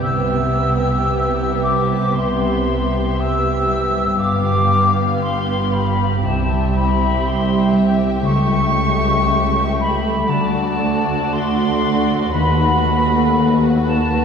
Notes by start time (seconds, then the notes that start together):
Already playing: B3 G4
0.02 C2 C3 E5 E6
0.30 G3
0.56 B3
0.83 G4
1.09 E5
1.36 G4
1.62 G3 D6
1.88 B3
2.13 C3 C6
2.39 G3
2.65 B3
2.91 G4
3.16 E5 E6
3.42 G4
3.67 G3
3.92 B3
4.17 G1 G2 B3 G4 F5 D6
4.42 D3
4.68 B3
4.94 G4
5.20 F5 C6
5.46 G4
5.72 D3 B5
5.98 B3
6.24 C2 C3 C4 E5 A5
6.49 G3
6.74 C4 B5
6.99 G4
7.23 E5 C6
7.48 G4
7.72 G3
7.97 C4
8.22 C#2 C#3 A3 C#6
8.47 G3
8.74 A3
9.00 G4
9.27 E5
9.52 G4
9.78 G3 B5
10.03 A3
10.28 D2 D3 F#4 D5 A5
10.54 D4
10.80 A3
11.06 F#4
11.30 D5 C6
11.56 F#4
11.82 D4
12.08 A3
12.33 D#2 D#3 B4 B5
12.60 D#4
12.86 A3
13.12 F#4
13.38 B4
13.62 F#4
13.86 D#4 A5
14.13 A3